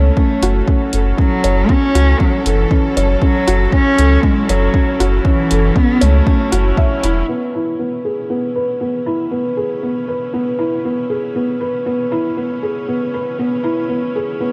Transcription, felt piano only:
0.00 0.17 C#4 medium
0.00 0.93 A4 medium
0.00 0.16 C#5 medium
0.17 0.41 C#4 medium
0.43 0.57 F#4 medium
0.68 0.92 C#4 medium
0.93 1.17 A4 medium
1.17 1.42 C#4 medium
1.44 1.68 C#5 medium
1.69 1.94 C#4 medium
1.95 2.10 F#4 medium
2.20 2.44 C#4 medium
2.46 2.70 A4 medium
2.71 2.95 C#4 medium
2.97 3.21 C#5 medium
3.22 3.46 C#4 medium
3.47 3.62 F#4 loud
3.72 3.97 C#4 medium
3.98 4.23 A4 medium
4.24 4.48 C#4 medium
4.49 4.74 C#5 medium
4.75 4.99 C#4 medium
5.00 5.15 F#4 loud
5.26 5.50 C#4 medium
5.51 5.75 A4 medium
5.76 6.01 C#4 medium
6.01 6.26 C#5 medium
6.27 6.51 C#4 medium
6.52 6.77 F#4 loud
6.77 7.02 E5 medium
7.03 7.28 E4 loud
7.29 7.53 B3 medium
7.55 7.69 E4 medium
7.79 8.04 B3 medium
8.05 8.29 G#4 medium
8.30 8.54 B3 medium
8.55 8.80 B4 medium
8.81 9.05 B3 medium
9.06 9.21 E4 medium
9.31 9.56 B3 medium
9.57 9.82 G#4 medium
9.83 10.07 B3 medium
10.08 10.33 B4 medium
10.34 10.58 B3 medium
10.59 10.74 E4 medium
10.85 11.09 B3 medium
11.10 11.34 G#4 medium
11.36 11.60 B3 medium
11.61 11.85 B4 medium
11.86 12.10 B3 medium
12.12 12.26 E4 medium
12.37 12.62 B3 medium
12.63 12.87 G#4 medium
12.88 13.12 B3 medium
13.14 13.38 B4 medium
13.39 13.63 B3 medium
13.64 13.79 E4 medium
13.89 14.14 B3 medium
14.16 14.40 G#4 medium
14.41 14.52 B3 medium

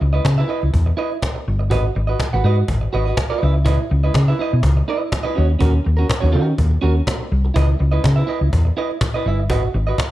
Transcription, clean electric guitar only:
0.01 muted clean electric guitar stroke soft
0.13 0.24 E4 soft
0.13 0.24 B4 medium
0.13 0.25 D#5 medium
0.25 muted clean electric guitar stroke soft
0.38 0.47 E4 soft
0.38 0.48 B4 medium
0.38 0.49 E5 medium
0.48 0.68 E4 medium
0.48 0.62 B4 medium
0.48 0.60 D#5 medium
0.62 muted clean electric guitar stroke soft
0.86 muted clean electric guitar stroke soft
0.97 1.17 E4 medium
0.97 1.11 B4 medium
0.97 1.10 D#5 medium
1.11 muted clean electric guitar stroke soft
1.22 muted clean electric guitar stroke soft
1.35 muted clean electric guitar stroke soft
1.59 muted clean electric guitar stroke soft
1.70 1.90 F#4 medium
1.70 1.84 B4 medium
1.70 1.83 D#5 medium
1.84 muted clean electric guitar stroke soft
1.95 muted clean electric guitar stroke soft
2.07 2.18 F#4 soft
2.07 2.19 B4 medium
2.07 2.19 D#5 medium
2.19 muted clean electric guitar stroke soft
2.33 2.43 F#4 soft
2.33 2.44 B4 medium
2.33 2.45 F#5 medium
2.44 2.63 F#4 medium
2.44 2.58 B4 medium
2.44 2.57 D#5 medium
2.58 muted clean electric guitar stroke soft
2.70 muted clean electric guitar stroke soft
2.81 muted clean electric guitar stroke soft
2.93 3.07 F#4 medium
2.93 3.06 B4 medium
2.93 3.04 D#5 medium
3.05 3.16 F#4 medium
3.05 3.17 B4 medium
3.05 3.17 D#5 medium
3.17 muted clean electric guitar stroke soft
3.30 3.41 F#4 medium
3.30 3.42 B4 medium
3.30 3.43 D#5 medium
3.42 3.57 E4 soft
3.42 3.54 B4 medium
3.42 3.54 E5 medium
3.54 muted clean electric guitar stroke soft
3.65 3.84 E4 medium
3.65 3.78 B4 medium
3.65 3.76 D#5 medium
3.78 muted clean electric guitar stroke soft
3.90 muted clean electric guitar stroke soft
4.04 4.14 E4 soft
4.04 4.15 B4 soft
4.04 4.15 D#5 soft
4.15 muted clean electric guitar stroke soft
4.28 4.38 E4 soft
4.28 4.39 B4 soft
4.28 4.41 E5 medium
4.39 4.58 E4 medium
4.39 4.52 B4 medium
4.39 4.52 D#5 loud
4.53 muted clean electric guitar stroke soft
4.77 muted clean electric guitar stroke soft
4.88 5.08 E4 medium
4.88 5.01 B4 medium
4.88 5.00 D#5 medium
5.01 muted clean electric guitar stroke soft
5.12 muted clean electric guitar stroke soft
5.23 5.36 E4 medium
5.23 5.37 B4 medium
5.23 5.43 D#5 medium
5.35 5.51 C#4 medium
5.35 5.49 F#4 medium
5.35 5.48 C#5 medium
5.48 muted clean electric guitar stroke soft
5.59 5.79 C#4 medium
5.59 5.74 F#4 medium
5.59 5.72 A#4 medium
5.74 muted clean electric guitar stroke soft
5.85 muted clean electric guitar stroke soft
5.97 6.07 C#4 medium
5.97 6.08 F#4 medium
5.97 6.08 A#4 medium
6.08 muted clean electric guitar stroke soft
6.20 6.31 C#4 soft
6.20 6.31 F#4 soft
6.20 6.33 C#5 medium
6.32 6.53 C#4 medium
6.32 6.47 F#4 medium
6.32 6.45 A#4 medium
6.47 muted clean electric guitar stroke soft
6.70 muted clean electric guitar stroke soft
6.81 7.01 C#4 medium
6.81 6.96 F#4 medium
6.81 6.94 A#4 medium
6.95 muted clean electric guitar stroke soft
7.07 muted clean electric guitar stroke soft
7.20 muted clean electric guitar stroke soft
7.45 muted clean electric guitar stroke soft
7.54 7.74 E4 medium
7.54 7.67 B4 medium
7.54 7.66 D#5 medium
7.67 muted clean electric guitar stroke soft
7.79 muted clean electric guitar stroke soft
7.92 8.02 E4 medium
7.92 8.02 B4 medium
7.92 8.03 D#5 medium
8.03 muted clean electric guitar stroke soft
8.16 8.26 E4 soft
8.16 8.27 B4 soft
8.16 8.29 E5 medium
8.27 8.47 E4 medium
8.27 8.40 B4 medium
8.27 8.39 D#5 medium
8.40 muted clean electric guitar stroke soft
8.65 muted clean electric guitar stroke soft
8.77 8.96 E4 medium
8.77 8.90 B4 medium
8.77 8.88 D#5 medium
8.90 muted clean electric guitar stroke soft
9.02 muted clean electric guitar stroke soft
9.14 9.25 E4 medium
9.14 9.26 B4 medium
9.14 9.27 D#5 medium
9.26 9.41 E4 medium
9.26 9.40 B4 medium
9.26 9.39 E5 medium
9.40 muted clean electric guitar stroke medium
9.50 9.69 F#4 medium
9.50 9.63 B4 medium
9.50 9.62 D#5 medium
9.63 muted clean electric guitar stroke soft
9.75 muted clean electric guitar stroke soft
9.87 9.96 F#4 soft
9.87 9.97 B4 medium
9.87 9.98 D#5 medium
9.98 muted clean electric guitar stroke soft

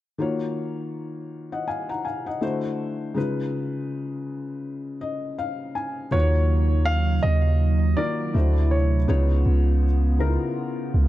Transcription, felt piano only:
0.18 2.37 D#3 medium
0.18 2.38 A#3 medium
0.18 2.38 F4 medium
0.18 2.39 F#4 medium
0.18 2.39 C#5 medium
1.52 1.67 D#5 soft
1.52 1.67 F#5 medium
1.68 1.88 F5 medium
1.68 1.88 G#5 medium
1.89 2.04 F#5 medium
1.89 2.04 A#5 medium
2.05 2.26 F5 medium
2.05 2.25 G#5 medium
2.26 2.62 D#5 medium
2.26 2.62 F#5 medium
2.41 3.16 D3 medium
2.41 3.16 A3 medium
2.41 3.16 E4 medium
2.41 3.16 F#4 medium
2.41 3.16 C5 medium
3.14 6.08 C#3 medium
3.14 6.08 G#3 medium
3.14 6.08 D#4 medium
3.14 6.09 F4 medium
3.14 6.09 B4 medium
5.01 5.36 D#5 medium
5.38 5.73 F5 medium
5.75 6.10 G#5 medium
6.11 7.15 D#3 medium
6.11 7.15 A#3 medium
6.11 7.15 F4 medium
6.11 7.15 F#4 medium
6.11 6.20 B4 medium
6.19 7.19 C#5 loud
7.97 8.34 D#3 medium
7.97 8.34 A#3 medium
7.97 8.35 F4 medium
7.97 8.33 F#4 medium
7.97 8.35 A#4 medium
8.34 8.96 D3 medium
8.34 8.96 A3 medium
8.34 8.96 E4 medium
8.34 8.96 F#4 medium
8.34 8.97 C5 medium
9.08 9.85 C#3 medium
9.08 9.85 B3 medium
9.08 9.85 D#4 medium
9.08 9.85 F4 medium
9.08 9.85 C#5 loud
10.19 11.08 C#3 medium
10.19 11.08 B3 medium
10.19 11.08 D#4 medium
10.19 10.27 E4 medium
10.19 11.08 A#4 medium
10.26 11.08 F4 medium

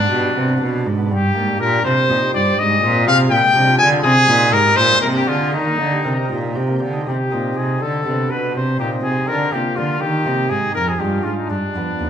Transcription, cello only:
0.00 0.10 G#2 medium
0.11 0.35 B2 medium
0.36 0.61 C3 medium
0.61 0.88 B2 medium
0.87 1.13 G#2 medium
1.11 1.36 G2 medium
1.36 1.60 G#2 medium
1.61 1.84 A#2 medium
1.85 1.93 C3 medium
2.10 2.18 A#2 medium
2.35 2.58 G2 medium
2.58 2.82 G#2 medium
2.83 3.09 A#2 medium
3.07 3.30 C3 medium
3.31 3.39 A#2 medium
3.56 3.79 C3 medium
3.80 4.03 D3 medium
4.04 4.12 C3 medium
4.28 4.54 A#2 medium
4.53 4.77 G#2 medium
4.78 5.02 A#2 medium
5.03 5.27 C3 medium
5.28 5.55 D3 medium
5.54 5.79 D#3 medium
5.79 6.04 D3 medium
6.05 6.13 C3 medium
6.31 6.58 A#2 medium
6.57 6.82 C3 medium
6.83 7.07 D3 medium
7.08 7.16 C3 medium
7.33 7.57 A#2 soft
7.58 7.82 C3 soft
7.83 8.06 D3 medium
8.07 8.31 C3 soft
8.32 8.57 B2 medium
8.56 8.80 C3 medium
8.81 9.04 A#2 medium
9.04 9.28 C3 medium
9.29 9.53 D3 medium
9.54 9.62 C3 medium
9.78 10.01 D3 medium
10.02 10.28 D#3 medium
10.26 10.50 C3 medium
10.51 10.59 G#2 medium
10.76 11.00 F2 medium
11.00 11.24 G2 medium
11.25 11.33 G#2 soft
11.50 11.58 G2 medium
11.75 11.83 F2 soft
12.01 12.10 D#2 soft

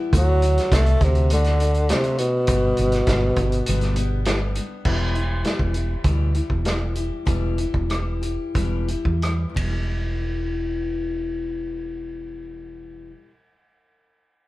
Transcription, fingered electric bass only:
0.13 0.57 D2 loud
0.72 0.94 C2 loud
1.01 1.91 D2 loud
2.49 2.71 G1 medium
2.79 3.01 G1 loud
3.07 3.30 G1 loud
3.37 3.60 G1 medium
3.69 4.58 G1 loud
4.85 5.42 E1 medium
5.60 5.94 E1 medium
6.04 6.39 D2 medium
6.50 7.09 E1 medium
7.27 7.64 E1 medium
7.74 8.36 E1 medium
8.55 8.93 E1 medium
9.05 9.45 E2 medium
9.56 13.11 E1 medium

